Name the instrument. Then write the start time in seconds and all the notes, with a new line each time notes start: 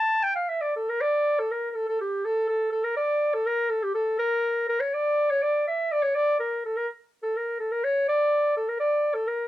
clarinet
Already playing: A5
0.23 G5
0.35 F5
0.49 E5
0.61 D5
0.76 A4
0.89 A#4
1.01 D5
1.39 A4
1.51 A#4
1.71 A4 A#4
1.89 A4
2.01 G4
2.25 A4
2.48 A4
2.72 A4
2.84 A#4
2.97 D5
3.34 A4
3.46 A#4
3.70 A4
3.84 G4
3.95 A4
4.19 A#4
4.69 A#4
4.80 C#5
4.94 D5
5.30 C#5
5.43 D5
5.68 E5
5.92 D5
6.03 C#5
6.15 D5
6.40 A#4
6.65 A4
6.76 A#4
7.23 A4
7.37 A#4
7.60 A4
7.71 A#4
7.84 C#5
8.08 D5
8.57 A4
8.68 A#4
8.80 D5
9.14 A4
9.27 A#4